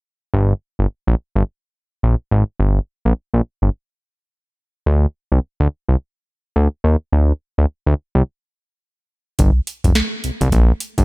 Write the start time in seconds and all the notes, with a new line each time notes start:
0.34 G1
0.79 G1
1.07 A#1
1.35 G1
2.03 A#1
2.31 G#1
2.60 G1
3.05 A#1
3.34 A#1
3.62 G1
4.86 D2
5.32 C2
5.60 D2
5.89 C2
6.56 D2
6.84 D#2
7.12 D2
7.58 D2
7.87 D2
8.15 C2
9.39 G1, kick, closed hi-hat
9.67 closed hi-hat
9.84 F1, kick, closed hi-hat
9.95 snare, closed hi-hat
10.24 C2, closed hi-hat
10.41 C2, kick, closed hi-hat
10.52 A#1, kick, closed hi-hat
10.80 closed hi-hat
10.98 G1, kick, closed hi-hat